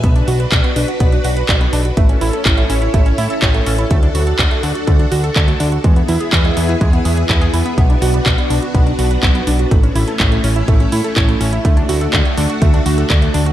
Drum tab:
HH |xxoxxxoxxxoxxxox|xxoxxxoxxxoxxxox|xxoxxxoxxxoxxxox|xxoxxxoxxxoxxxox|
CP |----x-------x---|----x-------x---|----x-------x---|----x-------x---|
BD |o---o---o---o---|o---o---o---o---|o---o---o---o---|o---o---o---o---|

HH |xxoxxxoxxxoxxxox|xxoxxxoxxxoxxxox|xxoxxxoxxxoxxxox|
CP |----x-------x---|----x-------x---|----x-------x---|
BD |o---o---o---o---|o---o---o---o---|o---o---o---o---|